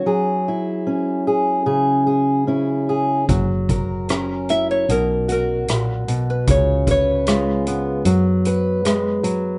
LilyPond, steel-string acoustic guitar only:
\new Staff \with { instrumentName = "Steel-string acoustic guitar" } { \time 4/4 \key fis \mixolydian \tempo 4 = 75 << { gis'8 e'4 gis'8 gis'8 gis'8 e'8 gis'8 | r8 ais'8 ais'8 e'8 r8 fis'4. | r8 b'8 eis'8 b4 b'4. | } \\ { fis4 cis'4 cis4 cis'4 | fis4 cis'4 b,4 ais,8 b,8 | cis4 gis4 fis4 gis8 fis8 | } >> }